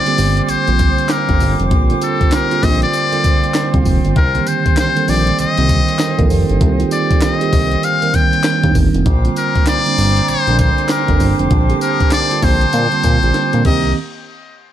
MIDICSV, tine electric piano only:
0, 0, Header, 1, 2, 480
1, 0, Start_track
1, 0, Tempo, 612245
1, 1342, Time_signature, 4, 2, 24, 8
1, 11546, End_track
2, 0, Start_track
2, 0, Title_t, "Tine electric piano"
2, 0, Program_c, 0, 4
2, 0, Control_c, 0, 64, 127
2, 0, Note_on_c, 0, 50, 79
2, 0, Note_on_c, 0, 55, 72
2, 0, Note_on_c, 0, 58, 65
2, 0, Note_on_c, 0, 60, 65
2, 0, Note_on_c, 0, 65, 87
2, 47, Note_off_c, 0, 50, 0
2, 47, Note_on_c, 0, 50, 78
2, 48, Note_off_c, 0, 55, 0
2, 48, Note_on_c, 0, 55, 67
2, 51, Note_off_c, 0, 58, 0
2, 51, Note_on_c, 0, 58, 65
2, 54, Note_off_c, 0, 60, 0
2, 54, Note_on_c, 0, 60, 68
2, 55, Note_on_c, 0, 67, 78
2, 482, Note_off_c, 0, 50, 0
2, 483, Note_off_c, 0, 55, 0
2, 485, Note_off_c, 0, 58, 0
2, 486, Note_off_c, 0, 60, 0
2, 487, Note_off_c, 0, 67, 0
2, 525, Note_on_c, 0, 50, 78
2, 529, Note_on_c, 0, 55, 76
2, 531, Note_on_c, 0, 58, 75
2, 533, Note_on_c, 0, 60, 81
2, 536, Note_off_c, 0, 65, 0
2, 536, Note_on_c, 0, 65, 93
2, 962, Note_off_c, 0, 50, 0
2, 963, Note_off_c, 0, 55, 0
2, 964, Note_off_c, 0, 58, 0
2, 966, Note_off_c, 0, 60, 0
2, 967, Note_off_c, 0, 65, 0
2, 1007, Note_on_c, 0, 50, 80
2, 1009, Note_on_c, 0, 55, 77
2, 1012, Note_on_c, 0, 58, 66
2, 1014, Note_on_c, 0, 60, 76
2, 1016, Note_on_c, 0, 65, 88
2, 1442, Note_off_c, 0, 50, 0
2, 1443, Note_off_c, 0, 55, 0
2, 1445, Note_off_c, 0, 58, 0
2, 1446, Note_off_c, 0, 60, 0
2, 1447, Note_off_c, 0, 65, 0
2, 1487, Note_on_c, 0, 50, 70
2, 1490, Note_on_c, 0, 55, 68
2, 1492, Note_on_c, 0, 58, 68
2, 1494, Note_on_c, 0, 60, 67
2, 1496, Note_on_c, 0, 65, 87
2, 1923, Note_off_c, 0, 50, 0
2, 1924, Note_off_c, 0, 55, 0
2, 1925, Note_off_c, 0, 58, 0
2, 1926, Note_off_c, 0, 60, 0
2, 1927, Note_off_c, 0, 65, 0
2, 1966, Note_on_c, 0, 50, 73
2, 1968, Note_on_c, 0, 55, 65
2, 1971, Note_on_c, 0, 58, 67
2, 1973, Note_on_c, 0, 60, 64
2, 1975, Note_on_c, 0, 65, 82
2, 2402, Note_off_c, 0, 50, 0
2, 2403, Note_off_c, 0, 55, 0
2, 2404, Note_off_c, 0, 58, 0
2, 2406, Note_off_c, 0, 60, 0
2, 2407, Note_off_c, 0, 65, 0
2, 2446, Note_on_c, 0, 50, 78
2, 2447, Note_on_c, 0, 55, 75
2, 2450, Note_on_c, 0, 58, 74
2, 2452, Note_on_c, 0, 60, 80
2, 2455, Note_on_c, 0, 65, 92
2, 2882, Note_off_c, 0, 50, 0
2, 2883, Note_off_c, 0, 55, 0
2, 2884, Note_off_c, 0, 58, 0
2, 2885, Note_off_c, 0, 60, 0
2, 2886, Note_off_c, 0, 65, 0
2, 2926, Note_on_c, 0, 50, 95
2, 2929, Note_on_c, 0, 55, 82
2, 2931, Note_on_c, 0, 58, 79
2, 2933, Note_on_c, 0, 60, 88
2, 2935, Note_on_c, 0, 65, 105
2, 3260, Note_off_c, 0, 50, 0
2, 3261, Note_off_c, 0, 55, 0
2, 3262, Note_off_c, 0, 58, 0
2, 3263, Note_off_c, 0, 60, 0
2, 3264, Note_off_c, 0, 65, 0
2, 3273, Control_c, 0, 64, 0
2, 3405, Note_on_c, 0, 50, 65
2, 3408, Note_on_c, 0, 55, 67
2, 3410, Note_on_c, 0, 58, 67
2, 3413, Note_on_c, 0, 60, 66
2, 3414, Note_on_c, 0, 67, 83
2, 3422, Control_c, 0, 64, 127
2, 3447, Note_off_c, 0, 50, 0
2, 3456, Note_on_c, 0, 51, 76
2, 3843, Note_off_c, 0, 55, 0
2, 3844, Note_off_c, 0, 58, 0
2, 3845, Note_off_c, 0, 60, 0
2, 3846, Note_off_c, 0, 67, 0
2, 3867, Note_off_c, 0, 51, 0
2, 3887, Note_on_c, 0, 51, 68
2, 3888, Note_on_c, 0, 55, 68
2, 3891, Note_on_c, 0, 58, 66
2, 3894, Note_on_c, 0, 60, 68
2, 3896, Note_on_c, 0, 69, 81
2, 4322, Note_off_c, 0, 51, 0
2, 4323, Note_off_c, 0, 55, 0
2, 4325, Note_off_c, 0, 58, 0
2, 4326, Note_off_c, 0, 60, 0
2, 4327, Note_off_c, 0, 69, 0
2, 4367, Note_on_c, 0, 51, 86
2, 4368, Note_on_c, 0, 55, 77
2, 4371, Note_on_c, 0, 58, 75
2, 4373, Note_on_c, 0, 60, 80
2, 4375, Note_on_c, 0, 65, 87
2, 4802, Note_off_c, 0, 51, 0
2, 4803, Note_off_c, 0, 55, 0
2, 4804, Note_off_c, 0, 58, 0
2, 4806, Note_off_c, 0, 60, 0
2, 4807, Note_off_c, 0, 65, 0
2, 4845, Note_on_c, 0, 51, 95
2, 4848, Note_on_c, 0, 55, 87
2, 4850, Note_on_c, 0, 58, 83
2, 4853, Note_on_c, 0, 60, 87
2, 4854, Note_on_c, 0, 69, 94
2, 5281, Note_off_c, 0, 51, 0
2, 5283, Note_off_c, 0, 55, 0
2, 5284, Note_off_c, 0, 58, 0
2, 5285, Note_off_c, 0, 60, 0
2, 5286, Note_off_c, 0, 69, 0
2, 5325, Note_on_c, 0, 51, 75
2, 5328, Note_on_c, 0, 55, 69
2, 5330, Note_on_c, 0, 58, 64
2, 5333, Note_on_c, 0, 60, 68
2, 5335, Note_on_c, 0, 65, 66
2, 5372, Note_off_c, 0, 65, 0
2, 5386, Note_on_c, 0, 67, 82
2, 5762, Note_off_c, 0, 51, 0
2, 5763, Note_off_c, 0, 55, 0
2, 5764, Note_off_c, 0, 58, 0
2, 5765, Note_off_c, 0, 60, 0
2, 5792, Note_off_c, 0, 67, 0
2, 5805, Note_on_c, 0, 51, 73
2, 5808, Note_on_c, 0, 55, 72
2, 5811, Note_on_c, 0, 58, 65
2, 5813, Note_on_c, 0, 60, 67
2, 5816, Note_on_c, 0, 67, 76
2, 6242, Note_off_c, 0, 51, 0
2, 6243, Note_off_c, 0, 55, 0
2, 6244, Note_off_c, 0, 58, 0
2, 6245, Note_off_c, 0, 60, 0
2, 6247, Note_off_c, 0, 67, 0
2, 6286, Note_on_c, 0, 51, 83
2, 6287, Note_on_c, 0, 55, 75
2, 6290, Note_on_c, 0, 58, 74
2, 6292, Note_on_c, 0, 60, 79
2, 6295, Note_on_c, 0, 70, 89
2, 6722, Note_off_c, 0, 51, 0
2, 6723, Note_off_c, 0, 55, 0
2, 6724, Note_off_c, 0, 58, 0
2, 6725, Note_off_c, 0, 60, 0
2, 6726, Note_off_c, 0, 70, 0
2, 6765, Note_on_c, 0, 51, 81
2, 6768, Note_on_c, 0, 55, 73
2, 6769, Note_on_c, 0, 58, 69
2, 6772, Note_on_c, 0, 60, 72
2, 6775, Note_on_c, 0, 62, 69
2, 6811, Note_off_c, 0, 62, 0
2, 6825, Note_on_c, 0, 63, 84
2, 7099, Note_off_c, 0, 51, 0
2, 7100, Note_off_c, 0, 55, 0
2, 7101, Note_off_c, 0, 58, 0
2, 7102, Note_off_c, 0, 60, 0
2, 7110, Control_c, 0, 64, 0
2, 7129, Note_off_c, 0, 63, 0
2, 7248, Note_on_c, 0, 50, 77
2, 7250, Note_on_c, 0, 55, 71
2, 7253, Note_on_c, 0, 58, 68
2, 7255, Note_on_c, 0, 60, 69
2, 7257, Note_on_c, 0, 65, 85
2, 7263, Control_c, 0, 64, 127
2, 7683, Note_off_c, 0, 50, 0
2, 7684, Note_off_c, 0, 55, 0
2, 7686, Note_off_c, 0, 58, 0
2, 7686, Note_off_c, 0, 60, 0
2, 7687, Note_off_c, 0, 65, 0
2, 7728, Note_on_c, 0, 50, 71
2, 7730, Note_on_c, 0, 55, 64
2, 7732, Note_on_c, 0, 58, 70
2, 7735, Note_on_c, 0, 60, 67
2, 7737, Note_on_c, 0, 62, 83
2, 8163, Note_off_c, 0, 50, 0
2, 8164, Note_off_c, 0, 55, 0
2, 8165, Note_off_c, 0, 58, 0
2, 8166, Note_off_c, 0, 60, 0
2, 8168, Note_off_c, 0, 62, 0
2, 8208, Note_on_c, 0, 50, 83
2, 8211, Note_on_c, 0, 55, 73
2, 8213, Note_on_c, 0, 58, 80
2, 8215, Note_on_c, 0, 60, 71
2, 8217, Note_on_c, 0, 62, 98
2, 8643, Note_off_c, 0, 50, 0
2, 8644, Note_off_c, 0, 55, 0
2, 8645, Note_off_c, 0, 58, 0
2, 8647, Note_off_c, 0, 60, 0
2, 8648, Note_off_c, 0, 62, 0
2, 8688, Note_on_c, 0, 50, 80
2, 8690, Note_on_c, 0, 55, 67
2, 8693, Note_on_c, 0, 58, 68
2, 8695, Note_on_c, 0, 60, 70
2, 8697, Note_on_c, 0, 62, 90
2, 9123, Note_off_c, 0, 50, 0
2, 9124, Note_off_c, 0, 55, 0
2, 9126, Note_off_c, 0, 58, 0
2, 9127, Note_off_c, 0, 60, 0
2, 9127, Note_off_c, 0, 62, 0
2, 9168, Note_on_c, 0, 50, 76
2, 9170, Note_on_c, 0, 55, 68
2, 9172, Note_on_c, 0, 58, 72
2, 9175, Note_on_c, 0, 60, 72
2, 9177, Note_on_c, 0, 67, 81
2, 9603, Note_off_c, 0, 50, 0
2, 9604, Note_off_c, 0, 55, 0
2, 9605, Note_off_c, 0, 58, 0
2, 9606, Note_off_c, 0, 60, 0
2, 9608, Note_off_c, 0, 67, 0
2, 9647, Note_on_c, 0, 50, 71
2, 9650, Note_on_c, 0, 55, 62
2, 9652, Note_on_c, 0, 58, 64
2, 9655, Note_on_c, 0, 60, 66
2, 9658, Note_on_c, 0, 65, 85
2, 10083, Note_off_c, 0, 50, 0
2, 10084, Note_off_c, 0, 55, 0
2, 10085, Note_off_c, 0, 58, 0
2, 10087, Note_off_c, 0, 60, 0
2, 10088, Note_off_c, 0, 65, 0
2, 10129, Note_on_c, 0, 50, 81
2, 10130, Note_on_c, 0, 55, 72
2, 10132, Note_on_c, 0, 58, 73
2, 10136, Note_on_c, 0, 60, 73
2, 10137, Note_on_c, 0, 65, 89
2, 10563, Note_off_c, 0, 50, 0
2, 10564, Note_off_c, 0, 55, 0
2, 10565, Note_off_c, 0, 58, 0
2, 10567, Note_off_c, 0, 60, 0
2, 10568, Note_off_c, 0, 65, 0
2, 10607, Note_on_c, 0, 50, 85
2, 10609, Note_on_c, 0, 55, 79
2, 10611, Note_on_c, 0, 58, 82
2, 10614, Note_on_c, 0, 60, 91
2, 10616, Note_on_c, 0, 62, 102
2, 10692, Note_off_c, 0, 60, 0
2, 10693, Note_off_c, 0, 58, 0
2, 10700, Note_off_c, 0, 50, 0
2, 10701, Note_off_c, 0, 55, 0
2, 10702, Note_on_c, 0, 51, 83
2, 10702, Note_on_c, 0, 58, 80
2, 10702, Note_on_c, 0, 60, 80
2, 10702, Note_on_c, 0, 67, 98
2, 10705, Note_off_c, 0, 62, 0
2, 10712, Control_c, 0, 64, 0
2, 10804, Control_c, 0, 64, 127
2, 10925, Note_off_c, 0, 51, 0
2, 10925, Note_off_c, 0, 58, 0
2, 10925, Note_off_c, 0, 60, 0
2, 10925, Note_off_c, 0, 67, 0
2, 10952, Control_c, 0, 64, 0
2, 11546, End_track
0, 0, End_of_file